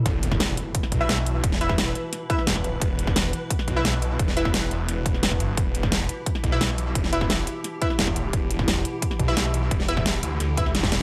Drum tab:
HH |x-x-x-x-x-x-x-x-|x-x-x-x-x-x-x-x-|x-x-x-x-x-x-x-x-|x-x-x-x-x-x-x-x-|
SD |---oo----o--oo--|-o-oo---o--ooo--|---oo----o--oo--|-o-oo---o--ooo--|
BD |o--o----o-o-----|o--o------o--o--|o--o----o-o-----|o--o------o--o--|

HH |x-x-x-x-x-x-x-x-|x-x-x-x-x-x-x-x-|x-x-x-x-x-x-x-x-|x-x-x-x-x-x-x-x-|
SD |---oo----o--oo--|-o-oo---o--ooo--|---oo----o--oo--|-o-oo---o--oooo-|
BD |o--o----o-o-----|o--o------o--o--|o--o----o-o-----|o--o------o--o--|